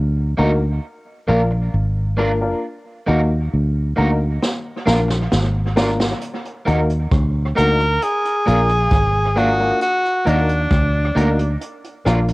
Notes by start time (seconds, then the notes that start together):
Already playing: D2
0.37 D2 A#3 D#4 F#4 A#4
1.27 A#1 A#3 D4 F4 A#4
1.51 muted clean electric guitar stroke
1.74 G#1
2.17 A#3 D4 F4 A#4
2.41 A#3 D4 F4 A#4
3.06 D#2 A#3 D#4 F#4 A#4
3.53 D2
3.96 D2 A#3 D#4 F#4 A#4
4.43 snare
4.86 A#1 A#3 D4 F4 A#4, snare
5.08 muted clean electric guitar stroke, snare
5.32 G#1, snare
5.76 A#3 D4 F4 A#4, snare
6.00 snare
6.21 closed hi-hat
6.45 closed hi-hat
6.65 D#2 A#3 D#4 F#4 A#4, closed hi-hat
6.90 closed hi-hat
7.11 D2, kick, cross-stick, closed hi-hat
7.55 D2 A#3 D#4 F#4 A#4, closed hi-hat
7.80 closed hi-hat
8.02 G#4, closed hi-hat
8.25 closed hi-hat
8.46 A#1 A#3 D4 F4 A#4, closed hi-hat
8.69 muted clean electric guitar stroke, closed hi-hat
8.91 G#1, kick, cross-stick, closed hi-hat
9.36 A#3 D4 F4 F#4 A#4, closed hi-hat
9.59 A#3 D4 F4 A#4
9.81 F#4, closed hi-hat
10.05 closed hi-hat
10.25 D#2 A#3 D4 D#4 F#4 A#4, closed hi-hat
10.49 closed hi-hat
10.71 D2, kick, cross-stick, closed hi-hat
11.15 D2 A#3 D#4 F#4 A#4, closed hi-hat
11.39 closed hi-hat
11.61 closed hi-hat
11.84 closed hi-hat
12.05 A#1 A#3 D4 F4 A#4, cross-stick, closed hi-hat
12.28 muted clean electric guitar stroke, closed hi-hat